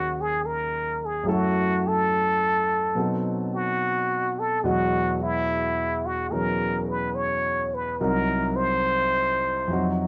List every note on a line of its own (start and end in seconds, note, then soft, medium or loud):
0.00 1.26 D#2 soft
0.00 1.26 C#3 soft
0.00 1.26 D#3 soft
0.00 1.24 F#3 soft
0.00 1.27 D#4 soft
0.00 0.23 F#4 medium
0.00 1.27 A#4 soft
0.00 1.28 C#5 soft
0.00 1.28 F5 soft
0.21 0.48 G#4 medium
0.46 1.07 A#4 medium
1.06 1.32 G#4 medium
1.23 2.93 F#2 soft
1.23 2.94 F#3 soft
1.23 2.95 A3 soft
1.28 2.96 E4 soft
1.28 1.89 F#4 medium
1.28 2.96 A4 medium
1.88 3.17 A4 medium
2.95 4.62 B2 soft
2.95 4.63 F#3 soft
2.95 4.64 C4 soft
2.95 4.64 D#4 soft
2.99 4.65 A4 soft
3.54 4.41 F#4 medium
4.39 4.66 A4 medium
4.64 8.00 E2 soft
4.64 6.30 B2 soft
4.64 6.31 F#3 soft
4.64 8.00 G#3 soft
4.64 5.21 F#4 medium
4.64 8.01 F#4 medium
4.64 8.01 D#5 soft
5.23 6.08 E4 medium
6.06 6.33 F#4 medium
6.31 8.00 B2 soft
6.31 8.00 E3 soft
6.31 7.99 F#3 soft
6.31 8.01 C#4 soft
6.31 8.01 G#4 soft
6.31 6.88 A#4 medium
6.89 7.17 B4 medium
7.15 7.76 C#5 medium
7.74 8.02 B4 medium
8.01 9.69 C2 medium
8.01 9.68 C3 soft
8.01 9.69 F#3 soft
8.01 9.70 D#4 medium
8.01 8.58 A#4 medium
8.01 9.70 A#4 medium
8.56 9.89 C5 loud
9.67 10.07 F2 soft
9.67 10.07 C3 soft
9.67 10.07 F#3 soft
9.72 10.07 D#4 soft
9.72 10.07 F#4 soft